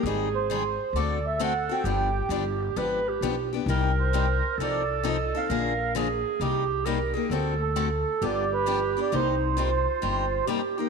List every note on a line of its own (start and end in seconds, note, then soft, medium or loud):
0.03 0.76 G#1 medium
0.03 0.27 D#3 medium
0.03 0.27 G3 medium
0.03 0.28 C4 medium
0.03 0.28 D#4 medium
0.03 0.73 G#4 medium
0.07 0.28 G#4 medium
0.35 0.98 C5 medium
0.50 0.62 D#3 medium
0.50 0.62 G3 medium
0.50 0.62 C4 medium
0.50 0.62 D#4 medium
0.50 0.62 G#4 medium
0.93 1.67 D2 medium
0.93 1.18 D3 medium
0.93 1.18 A3 medium
0.93 1.18 C4 medium
0.93 1.18 F#4 medium
0.93 1.87 A4 medium
0.93 1.26 D5 medium
0.97 1.18 A4 medium
1.27 1.41 E5 medium
1.40 1.52 D3 medium
1.40 1.52 A3 medium
1.40 1.52 C4 medium
1.40 1.52 F#4 medium
1.40 1.52 A4 medium
1.40 1.72 F#5 medium
1.69 1.86 C4 soft
1.69 1.86 F#4 soft
1.69 1.85 A4 soft
1.69 2.29 G5 medium
1.84 2.21 G1 medium
1.84 2.08 D3 medium
1.84 2.08 F3 medium
1.84 2.08 B3 medium
1.84 2.08 D4 medium
1.84 2.79 G4 medium
1.84 2.08 G4 medium
2.29 2.69 G1 medium
2.29 2.43 D3 medium
2.29 2.43 F3 medium
2.29 2.43 B3 medium
2.29 2.43 D4 medium
2.29 2.43 G4 medium
2.76 3.15 G#1 medium
2.76 2.99 D3 medium
2.76 2.99 F3 medium
2.76 2.99 B3 medium
2.76 2.99 D4 medium
2.76 2.99 G4 medium
2.76 3.10 B4 medium
3.09 3.53 G4 medium
3.21 3.60 B1 medium
3.21 3.34 D3 medium
3.21 3.34 F3 medium
3.21 3.34 B3 medium
3.21 3.35 D4 medium
3.21 3.35 G4 medium
3.53 3.69 B3 soft
3.53 3.68 D4 soft
3.53 3.68 G4 medium
3.66 4.39 C2 medium
3.66 3.90 C3 medium
3.66 3.90 G3 medium
3.66 3.91 C4 medium
3.66 3.91 D#4 medium
3.66 3.91 G4 medium
3.66 4.60 A#4 medium
4.00 4.56 C5 medium
4.13 4.25 C3 medium
4.13 4.25 G3 medium
4.13 4.25 C4 medium
4.13 4.25 D#4 medium
4.13 4.26 G4 medium
4.58 5.31 C2 medium
4.58 4.81 C3 medium
4.58 4.81 F3 medium
4.58 4.82 C4 medium
4.58 4.82 D#4 medium
4.58 5.51 A4 medium
4.58 4.82 A4 medium
4.62 5.07 D5 medium
5.03 5.15 C3 medium
5.03 5.16 F3 medium
5.03 5.16 C4 medium
5.03 5.16 D#4 medium
5.03 5.16 A4 medium
5.09 5.37 D#5 medium
5.35 5.51 C4 soft
5.35 5.50 D#4 soft
5.35 5.49 A4 medium
5.35 5.93 F5 medium
5.50 6.22 A#1 medium
5.50 5.72 D3 medium
5.50 5.72 F3 medium
5.50 5.72 A#3 medium
5.50 5.72 D4 medium
5.50 5.72 G#4 medium
5.50 5.99 A#4 medium
5.95 6.06 D3 medium
5.95 6.07 F3 medium
5.95 6.07 A#3 medium
5.95 6.07 D4 medium
5.95 6.07 G#4 medium
5.95 6.44 G#4 medium
6.40 7.12 C2 medium
6.40 6.62 C3 medium
6.40 6.62 G3 medium
6.40 6.63 A#3 medium
6.40 6.63 D#4 medium
6.40 6.63 G4 medium
6.40 6.87 G4 medium
6.86 6.97 C3 medium
6.86 6.98 G3 medium
6.86 6.98 A#3 medium
6.86 6.98 D#4 medium
6.86 6.98 G4 medium
6.86 7.16 A#4 medium
7.14 7.31 A#3 soft
7.14 7.30 D#4 soft
7.14 7.30 G4 soft
7.14 7.31 G#4 medium
7.29 8.03 D2 medium
7.29 7.53 D3 medium
7.29 7.53 A3 medium
7.29 7.54 C4 medium
7.29 7.54 F#4 medium
7.29 7.96 A4 medium
7.29 7.54 A4 medium
7.62 8.24 A4 medium
7.76 7.88 D3 medium
7.76 7.88 A3 medium
7.76 7.88 C4 medium
7.76 7.88 F#4 medium
7.76 7.88 A4 medium
8.22 8.94 G1 medium
8.22 8.44 D3 medium
8.22 8.44 F3 medium
8.22 8.44 B3 medium
8.22 8.44 D4 medium
8.22 9.15 G4 loud
8.22 8.44 G4 medium
8.22 8.53 D5 loud
8.53 9.00 B4 loud
8.66 8.78 D3 medium
8.66 8.79 F3 medium
8.66 8.78 B3 medium
8.66 8.79 D4 medium
8.66 8.79 G4 medium
8.97 9.12 B3 soft
8.97 9.12 D4 soft
8.97 9.12 G4 medium
9.01 9.15 D5 medium
9.12 9.85 C2 medium
9.12 9.34 C3 medium
9.12 9.34 G3 medium
9.12 9.34 A#3 medium
9.12 9.34 D#4 medium
9.12 9.60 D#4 medium
9.12 9.35 G4 medium
9.12 10.45 C5 medium
9.57 9.69 C3 medium
9.57 9.69 G3 medium
9.57 9.69 A#3 medium
9.57 9.69 D#4 medium
9.57 10.48 F4 medium
9.57 9.70 G4 medium
10.02 10.39 G1 medium
10.02 10.24 C3 medium
10.02 10.24 G3 medium
10.02 10.24 A#3 medium
10.02 10.24 D#4 medium
10.02 10.25 G4 medium
10.46 10.59 C3 medium
10.46 10.59 G3 medium
10.46 10.60 A#3 medium
10.46 10.60 D#4 medium
10.46 10.80 G4 medium
10.46 10.60 G4 medium
10.78 10.89 A#3 soft
10.78 10.89 D#4 medium
10.78 10.89 D#4 soft
10.78 10.89 G4 medium